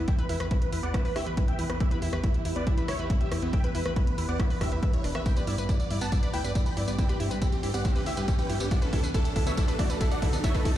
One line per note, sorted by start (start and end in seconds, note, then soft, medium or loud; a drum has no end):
0.00 8.67 B3 medium
0.00 5.22 E4 medium
0.00 5.22 G4 medium
0.00 riser medium
0.08 0.11 E4 loud
0.08 0.16 E5 medium
0.08 0.16 G5 medium
0.08 0.16 G5 loud
0.08 kick loud
0.08 closed hi-hat medium
0.18 0.25 B4 loud
0.18 0.27 B4 medium
0.18 closed hi-hat medium
0.29 0.38 E2 medium
0.29 0.33 E4 loud
0.29 0.38 B4 medium
0.29 open hi-hat loud
0.40 0.48 E2 medium
0.40 0.44 B4 loud
0.40 cross-stick medium
0.40 closed hi-hat soft
0.51 0.57 E4 medium
0.51 0.59 B4 medium
0.51 kick loud
0.51 closed hi-hat medium
0.62 0.70 B4 medium
0.62 closed hi-hat medium
0.72 0.81 E2 medium
0.72 0.79 E4 medium
0.72 0.81 B4 medium
0.72 open hi-hat loud
0.83 0.92 E2 medium
0.83 0.87 B3 medium
0.83 0.92 D5 medium
0.83 0.92 F#5 medium
0.83 closed hi-hat medium
0.94 0.98 E4 loud
0.94 1.02 B4 medium
0.94 1.03 B4 medium
0.94 kick loud
0.94 cross-stick medium
0.94 closed hi-hat medium
1.05 1.13 B4 medium
1.05 1.11 B4 loud
1.05 1.13 B4 medium
1.05 open hi-hat medium
1.16 1.24 D2 medium
1.16 1.19 E4 loud
1.16 1.24 G4 medium
1.16 1.24 E5 medium
1.16 cross-stick medium
1.16 open hi-hat loud
1.26 1.35 E2 medium
1.26 1.35 B4 medium
1.26 1.30 B4 loud
1.26 1.35 B4 medium
1.26 closed hi-hat soft
1.37 1.43 E4 medium
1.37 1.46 B4 medium
1.37 kick loud
1.37 closed hi-hat medium
1.48 1.56 E5 medium
1.48 1.56 G5 medium
1.48 1.57 G5 medium
1.48 closed hi-hat soft
1.59 1.67 E2 medium
1.59 1.65 E4 medium
1.59 1.67 B4 medium
1.59 open hi-hat loud
1.70 1.78 E2 medium
1.70 1.73 B3 medium
1.70 1.78 B4 medium
1.70 cross-stick medium
1.70 closed hi-hat soft
1.80 1.84 E4 loud
1.80 1.89 G4 medium
1.80 1.89 E5 loud
1.80 kick loud
1.80 closed hi-hat medium
1.91 2.00 E4 medium
1.91 1.97 B4 loud
1.91 closed hi-hat soft
2.02 2.10 E2 medium
2.02 2.10 E4 medium
2.02 2.06 E4 loud
2.02 open hi-hat loud
2.13 2.21 E2 medium
2.13 2.16 B4 loud
2.13 cross-stick medium
2.13 closed hi-hat soft
2.23 2.32 E4 medium
2.23 2.30 E4 medium
2.23 kick loud
2.23 closed hi-hat medium
2.34 2.43 E4 medium
2.34 closed hi-hat medium
2.45 2.53 E2 medium
2.45 2.53 E4 medium
2.45 2.54 E4 medium
2.45 2.51 E4 medium
2.45 open hi-hat loud
2.56 2.64 E2 medium
2.56 2.60 B3 medium
2.56 2.64 B4 medium
2.56 2.64 D5 medium
2.56 closed hi-hat soft
2.67 2.75 E4 medium
2.67 2.70 E4 loud
2.67 kick loud
2.67 closed hi-hat medium
2.77 2.86 E4 medium
2.77 2.84 B4 loud
2.77 closed hi-hat soft
2.88 2.97 D2 medium
2.88 2.97 E4 medium
2.88 2.92 E4 loud
2.88 2.97 C#5 medium
2.88 cross-stick medium
2.88 open hi-hat loud
2.99 3.07 E2 medium
2.99 3.07 E4 medium
2.99 3.08 E4 medium
2.99 3.03 B4 medium
2.99 closed hi-hat soft
3.10 3.18 E4 medium
3.10 3.16 E4 medium
3.10 kick loud
3.10 closed hi-hat medium
3.21 3.29 G4 medium
3.21 3.29 E5 medium
3.21 closed hi-hat soft
3.31 3.40 E2 medium
3.31 3.40 E4 medium
3.31 3.38 E4 medium
3.31 cross-stick medium
3.31 open hi-hat loud
3.42 3.50 E2 medium
3.42 3.46 B3 medium
3.42 3.51 E4 medium
3.42 closed hi-hat soft
3.53 3.57 E4 loud
3.53 3.61 E5 medium
3.53 3.61 G5 loud
3.53 3.62 G5 loud
3.53 kick loud
3.53 closed hi-hat medium
3.64 3.72 B4 medium
3.64 3.70 B4 loud
3.64 3.72 B4 medium
3.64 closed hi-hat soft
3.75 3.83 E2 medium
3.75 3.78 E4 loud
3.75 3.83 B4 medium
3.75 open hi-hat loud
3.85 3.94 E2 medium
3.85 3.89 B4 loud
3.85 cross-stick medium
3.85 closed hi-hat soft
3.96 4.02 E4 medium
3.96 4.05 B4 medium
3.96 kick loud
3.96 closed hi-hat medium
4.07 4.16 B4 medium
4.07 closed hi-hat soft
4.18 4.26 E2 medium
4.18 4.24 E4 medium
4.18 4.26 B4 medium
4.18 open hi-hat loud
4.29 4.37 E2 medium
4.29 4.32 B3 medium
4.29 4.37 D5 medium
4.29 4.37 F#5 medium
4.29 closed hi-hat soft
4.39 4.43 E4 loud
4.39 4.48 B4 medium
4.39 kick loud
4.39 cross-stick medium
4.39 closed hi-hat medium
4.50 4.56 B4 loud
4.50 4.59 B4 medium
4.50 open hi-hat medium
4.61 4.69 E1 medium
4.61 4.65 D4 medium
4.61 4.70 G4 medium
4.61 4.70 E5 medium
4.61 kick medium
4.61 cross-stick medium
4.61 open hi-hat loud
4.72 4.80 E2 medium
4.72 4.80 B4 medium
4.72 4.78 E5 medium
4.72 closed hi-hat soft
4.83 4.91 B4 medium
4.83 4.86 E5 medium
4.83 kick loud
4.83 closed hi-hat medium
4.93 5.02 E4 medium
4.93 5.02 C#5 medium
4.93 closed hi-hat soft
5.04 5.12 E1 medium
5.04 5.10 D4 medium
5.04 5.13 B4 medium
5.04 open hi-hat loud
5.15 5.23 E2 medium
5.15 5.24 B4 medium
5.15 5.21 E5 loud
5.15 cross-stick medium
5.15 closed hi-hat soft
5.26 10.78 D4 medium
5.26 5.29 E4 loud
5.26 8.68 G4 medium
5.26 5.34 G5 medium
5.26 5.34 B5 loud
5.26 kick loud
5.26 closed hi-hat medium
5.26 tambourine medium
5.37 5.43 B4 loud
5.37 5.45 D5 medium
5.37 closed hi-hat soft
5.37 tambourine soft
5.47 5.56 G2 medium
5.47 5.51 E4 loud
5.47 5.56 D5 medium
5.47 open hi-hat loud
5.58 5.66 G2 medium
5.58 5.62 B4 loud
5.58 closed hi-hat soft
5.58 tambourine medium
5.69 5.75 E4 medium
5.69 5.77 D5 medium
5.69 kick loud
5.69 closed hi-hat medium
5.69 tambourine medium
5.80 5.88 D5 medium
5.80 closed hi-hat soft
5.80 tambourine soft
5.90 5.99 G2 medium
5.90 5.97 E4 medium
5.90 5.99 D5 medium
5.90 open hi-hat loud
6.01 6.09 G2 medium
6.01 6.05 B3 medium
6.01 6.10 F#5 medium
6.01 6.10 A5 medium
6.01 closed hi-hat soft
6.01 tambourine medium
6.12 6.16 E4 loud
6.12 6.20 D5 medium
6.12 6.21 D5 medium
6.12 kick loud
6.12 closed hi-hat medium
6.12 tambourine medium
6.23 6.29 B4 loud
6.23 6.31 D5 medium
6.23 closed hi-hat soft
6.23 tambourine soft
6.33 6.42 D2 medium
6.33 6.37 E4 loud
6.33 6.42 B4 medium
6.33 6.42 G5 medium
6.33 open hi-hat loud
6.44 6.53 G2 medium
6.44 6.48 B4 loud
6.44 6.53 D5 medium
6.44 closed hi-hat soft
6.44 tambourine medium
6.55 6.61 E4 medium
6.55 6.63 D5 medium
6.55 6.64 D5 medium
6.55 kick loud
6.55 closed hi-hat medium
6.55 tambourine medium
6.66 6.74 G5 medium
6.66 6.74 B5 medium
6.66 6.75 B5 medium
6.66 closed hi-hat soft
6.66 tambourine soft
6.77 6.85 G2 loud
6.77 6.83 E4 medium
6.77 6.85 D5 medium
6.77 open hi-hat loud
6.88 6.96 G2 medium
6.88 6.91 B3 medium
6.88 6.96 D5 medium
6.88 closed hi-hat soft
6.88 tambourine medium
6.98 7.02 E4 loud
6.98 7.07 B4 medium
6.98 7.07 G5 loud
6.98 kick loud
6.98 closed hi-hat medium
6.98 tambourine medium
7.09 7.18 G4 medium
7.09 7.15 B4 loud
7.09 closed hi-hat medium
7.09 tambourine soft
7.20 7.28 G2 medium
7.20 7.24 E4 loud
7.20 7.28 G4 medium
7.20 7.29 G4 medium
7.20 open hi-hat loud
7.31 7.39 G2 medium
7.31 7.34 B4 loud
7.31 closed hi-hat soft
7.31 tambourine medium
7.41 7.48 E4 medium
7.41 7.50 G4 medium
7.41 kick loud
7.41 closed hi-hat medium
7.41 tambourine medium
7.52 7.61 G4 medium
7.52 closed hi-hat medium
7.52 tambourine soft
7.63 7.71 G2 medium
7.63 7.69 E4 medium
7.63 7.72 G4 medium
7.63 open hi-hat loud
7.74 7.82 G2 medium
7.74 7.78 B3 medium
7.74 7.82 D5 medium
7.74 7.82 F#5 loud
7.74 7.82 F#5 medium
7.74 closed hi-hat medium
7.74 tambourine medium
7.85 7.88 E4 loud
7.85 7.93 G4 medium
7.85 kick loud
7.85 closed hi-hat medium
7.85 tambourine medium
7.95 8.04 G4 medium
7.95 8.02 B4 loud
7.95 open hi-hat medium
7.95 tambourine soft
8.06 8.15 D2 medium
8.06 8.10 E4 loud
8.06 8.15 G4 medium
8.06 8.15 E5 medium
8.06 open hi-hat loud
8.17 8.25 G2 medium
8.17 8.26 G4 medium
8.17 8.21 B4 loud
8.17 closed hi-hat medium
8.17 tambourine medium
8.28 8.34 E4 medium
8.28 8.36 G4 medium
8.28 kick loud
8.28 closed hi-hat medium
8.28 tambourine medium
8.39 8.47 B4 medium
8.39 8.47 G5 medium
8.39 closed hi-hat medium
8.39 tambourine soft
8.50 8.58 G2 medium
8.50 8.56 E4 medium
8.50 8.58 G4 medium
8.50 open hi-hat loud
8.60 8.69 G2 medium
8.60 8.64 B3 medium
8.60 8.69 G4 medium
8.60 closed hi-hat medium
8.60 tambourine medium
8.71 10.78 D3 medium
8.71 8.75 E4 loud
8.71 10.78 E4 medium
8.71 10.78 F#4 medium
8.71 10.78 A4 medium
8.71 8.80 D5 medium
8.71 8.80 F#5 loud
8.71 kick loud
8.71 closed hi-hat medium
8.71 tambourine medium
8.82 8.90 A4 medium
8.82 8.88 B4 loud
8.82 closed hi-hat medium
8.82 tambourine soft
8.93 9.01 D2 loud
8.93 8.96 E4 loud
8.93 9.01 A4 medium
8.93 kick loud
8.93 open hi-hat loud
9.03 9.12 D2 medium
9.03 9.07 B4 loud
9.03 closed hi-hat medium
9.03 tambourine medium
9.14 9.20 E4 medium
9.14 9.23 A4 medium
9.14 kick loud
9.14 closed hi-hat medium
9.14 tambourine medium
9.25 9.34 A4 medium
9.25 closed hi-hat medium
9.25 tambourine soft
9.36 9.44 D2 medium
9.36 9.42 E4 medium
9.36 9.44 A4 medium
9.36 kick medium
9.36 open hi-hat loud
9.46 9.55 D2 medium
9.46 9.50 B3 medium
9.46 9.55 C#5 medium
9.46 9.55 E5 loud
9.46 9.55 E5 medium
9.46 closed hi-hat medium
9.46 tambourine medium
9.57 9.61 E4 loud
9.57 9.66 A4 medium
9.57 kick loud
9.57 closed hi-hat medium
9.57 tambourine medium
9.68 9.77 A4 medium
9.68 9.74 B4 loud
9.68 closed hi-hat medium
9.68 tambourine soft
9.79 9.87 A1 medium
9.79 9.83 E4 loud
9.79 9.88 F#4 medium
9.79 9.88 D5 medium
9.79 kick loud
9.79 open hi-hat loud
9.90 9.98 D2 medium
9.90 9.98 A4 medium
9.90 9.93 B4 loud
9.90 closed hi-hat medium
9.90 tambourine medium
10.01 10.07 E4 medium
10.01 10.09 A4 medium
10.01 kick loud
10.01 closed hi-hat medium
10.01 tambourine medium
10.11 10.20 D5 medium
10.11 10.20 F#5 medium
10.11 closed hi-hat medium
10.11 tambourine soft
10.22 10.30 D2 loud
10.22 10.28 E4 medium
10.22 10.31 A4 medium
10.22 kick loud
10.22 open hi-hat loud
10.33 10.41 D2 medium
10.33 10.37 B3 medium
10.33 10.41 A4 medium
10.33 closed hi-hat medium
10.33 tambourine medium
10.44 10.47 E4 loud
10.44 10.52 C#5 medium
10.44 10.52 E5 loud
10.44 kick loud
10.44 closed hi-hat medium
10.44 tambourine medium
10.54 10.63 A4 medium
10.54 10.61 B4 loud
10.54 kick medium
10.54 closed hi-hat medium
10.54 tambourine soft
10.65 10.74 D2 medium
10.65 10.69 E4 loud
10.65 10.74 A4 medium
10.65 kick loud
10.65 open hi-hat loud